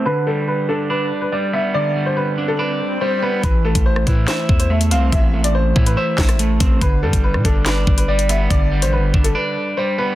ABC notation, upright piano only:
X:1
M:4/4
L:1/16
Q:1/4=142
K:Am
V:1 name="Upright piano"
B2 A2 B2 A2 B3 B d2 e2 | d3 c B3 A B4 c2 B2 | B2 A2 c2 B2 c3 c e2 f2 | e3 d c3 B c8 |
B2 A2 B2 A2 B3 B d2 e2 | d3 c B3 A B4 c2 B2 |]